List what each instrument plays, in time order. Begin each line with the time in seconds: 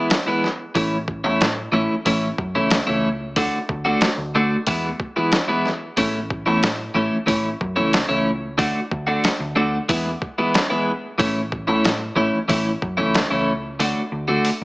Already playing: clean electric guitar E3 G#3 B3 E4
0.10 snare, open hi-hat
0.27 clean electric guitar E3 G#3 B3 E4
0.44 snare
0.75 picked electric bass A1, clean electric guitar E3 A3 C#4 E4, kick, open hi-hat
1.08 kick
1.24 picked electric bass E2, clean electric guitar E3 A3 C#4 E4
1.41 picked electric bass A2, snare, open hi-hat
1.72 picked electric bass A1, clean electric guitar E3 A3 C#4 E4
2.05 picked electric bass A1, clean electric guitar E3 A3 C#4 E4, kick, open hi-hat
2.38 picked electric bass F#2, kick
2.55 picked electric bass C#2, clean electric guitar E3 A3 C#4 E4
2.70 snare, open hi-hat
2.87 picked electric bass C#2, clean electric guitar E3 A3 C#4 E4
3.36 picked electric bass D2, clean electric guitar D3 A3 D4 F#4, kick, open hi-hat
3.69 picked electric bass D2, kick
3.85 clean electric guitar D3 A3 D4 F#4
4.01 snare, open hi-hat
4.17 picked electric bass D2
4.35 clean electric guitar D3 A3 D4 F#4
4.67 picked electric bass E2, clean electric guitar E3 G#3 B3 E4, kick, open hi-hat
5.00 kick
5.16 clean electric guitar E3 G#3 B3 E4
5.32 snare, open hi-hat
5.48 clean electric guitar E3 G#3 B3 E4
5.66 snare
5.97 picked electric bass A1, clean electric guitar E3 A3 C#4 E4, kick, open hi-hat
6.30 kick
6.46 picked electric bass E2, clean electric guitar E3 A3 C#4 E4
6.63 picked electric bass A2, snare, open hi-hat
6.94 picked electric bass A1, clean electric guitar E3 A3 C#4 E4
7.26 picked electric bass A1, clean electric guitar E3 A3 C#4 E4, kick, open hi-hat
7.61 picked electric bass F#2, kick
7.76 picked electric bass C#2, clean electric guitar E3 A3 C#4 E4
7.93 snare, open hi-hat
8.09 picked electric bass C#2, clean electric guitar E3 A3 C#4 E4
8.58 picked electric bass D2, clean electric guitar D3 A3 D4 F#4, kick, open hi-hat
8.91 picked electric bass D2, kick
9.07 clean electric guitar D3 A3 D4 F#4
9.24 snare, open hi-hat
9.40 picked electric bass D2
9.56 clean electric guitar D3 A3 D4 F#4
9.89 picked electric bass E2, clean electric guitar E3 G#3 B3 E4, kick, open hi-hat
10.22 kick
10.38 clean electric guitar E3 G#3 B3 E4
10.54 snare, open hi-hat
10.70 clean electric guitar E3 G#3 B3 E4
11.18 picked electric bass A1, clean electric guitar E3 A3 C#4 E4, kick, open hi-hat
11.52 kick
11.67 picked electric bass E2, clean electric guitar E3 A3 C#4 E4
11.84 picked electric bass A2, snare, open hi-hat
12.16 picked electric bass A1, clean electric guitar E3 A3 C#4 E4
12.48 picked electric bass A1, clean electric guitar E3 A3 C#4 E4, kick, open hi-hat
12.82 picked electric bass F#2, kick
12.97 picked electric bass C#2, clean electric guitar E3 A3 C#4 E4
13.14 snare, open hi-hat
13.30 picked electric bass C#2, clean electric guitar E3 A3 C#4 E4
13.80 picked electric bass D2, clean electric guitar D3 A3 D4 F#4, open hi-hat
14.12 picked electric bass D2
14.28 clean electric guitar D3 A3 D4 F#4
14.45 open hi-hat